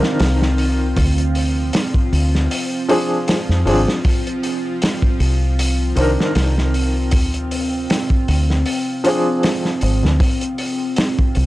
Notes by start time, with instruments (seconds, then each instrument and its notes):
Already playing: upright piano D#3 C4 D4 A#4, synth drone F3 F4, analog synth pad C4
0.03 snare
0.19 fingered electric bass C2, snare, open hi-hat
0.42 snare
0.58 open hi-hat
0.96 fingered electric bass D2, kick, open hi-hat
1.18 closed hi-hat
1.35 open hi-hat
1.73 snare, open hi-hat
1.94 kick
2.13 fingered electric bass D2, open hi-hat
2.35 snare
2.51 open hi-hat
2.89 upright piano F3 C4 D4 G#4, open hi-hat
3.28 snare, open hi-hat
3.49 fingered electric bass F2, snare
3.65 fingered electric bass G#1, upright piano F3 C4 D4 G#4, open hi-hat
3.88 snare
4.04 analog synth pad C4, kick, open hi-hat
4.27 closed hi-hat
4.43 open hi-hat
4.82 snare, open hi-hat
5.02 kick
5.20 fingered electric bass C2, open hi-hat
5.59 open hi-hat
5.95 fingered electric bass C2, upright piano D#3 C4 D4, open hi-hat
6.00 upright piano A#4
6.20 snare
6.35 fingered electric bass C2, snare, open hi-hat
6.58 snare
6.74 open hi-hat
7.11 fingered electric bass D2, kick, open hi-hat
7.34 closed hi-hat
7.51 open hi-hat
7.90 snare, open hi-hat
8.10 kick
8.28 fingered electric bass D2, open hi-hat
8.50 snare
8.66 open hi-hat
9.04 upright piano F3 C4 D4, open hi-hat
9.08 upright piano G#4
9.43 snare, open hi-hat
9.65 snare
9.81 fingered electric bass G#1, open hi-hat
10.03 fingered electric bass D2, snare
10.20 kick, open hi-hat
10.41 closed hi-hat
10.58 open hi-hat
10.96 snare, open hi-hat
11.19 kick
11.35 fingered electric bass C2, open hi-hat